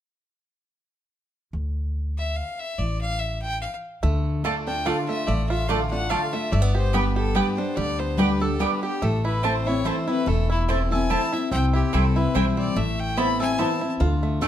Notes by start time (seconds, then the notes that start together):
1.53 D2
2.18 E5
2.36 F5
2.59 E5
2.78 A1 D5
3.01 F5
3.19 E5
3.42 G5
3.61 F5
4.03 D2 D3 A3
4.44 D3 A3 D4 F4 D5 A5
4.67 D4 F4 G5
4.85 D3 A3 D4 F4 D5 F5 A5
5.09 A3 D4 F4 E5
5.27 A1 A2 A3 D5
5.49 F4 E5
5.68 D3 A3 D4 F4 D5 F5 A5
5.91 D4 F4 F#5
6.10 D3 A3 D4 F4 D5 F5 A5
6.33 A3 D4 F4 E5
6.52 G1 G2 A3 D5
6.62 B3
6.75 G4 C5
6.93 G3 B3 D4 G4 B4 D5 G5
7.16 G4 A4
7.35 G3 B3 D4 G4 B4 D5 G5
7.57 D4 G4 C5
7.76 D2 D3 G3 D5
7.99 B3 C5
8.17 G3 B3 D4 G4 B4 D5 G5
8.40 D4 G4 A4
8.59 G3 B3 D4 G4 B4 D5 G5
8.83 D4 G4
9.02 A1 A2 A3 A4
9.25 E4 B4
9.43 E3 A3 C4 E4 C5 A5
9.66 C4 E4 C#5
9.85 E3 A3 C4 E4 C5 A5
10.08 C4 E4 B4
10.26 E1 E2 A3 A4
10.50 E4
10.68 E3 A3 C4 E4 C5 A5
10.91 C4 E4 A4 G#5
11.10 E3 A3 C4 E4 C5 A5
11.32 C4 E4 E5
11.51 C2 C3 C4 G5
11.73 E4 G4
11.93 C2 E3 G3 C4 E4 A4 C5 G5
12.16 C4 E4 B4
12.35 B1 E3 G3 C4 E4 C5 G5
12.57 C4 D5
12.76 A1 A2 A3 E5
13.00 G5
13.17 E3 B3 C4 E4 C5 A5 B5
13.40 C4 E4 A4 G#5
13.58 E3 B3 C4 E4 C5 A5
13.81 C4 E4
14.00 D2 D3 F4
14.23 A3
14.41 D3 A3 D4 F4 A4 D5 A5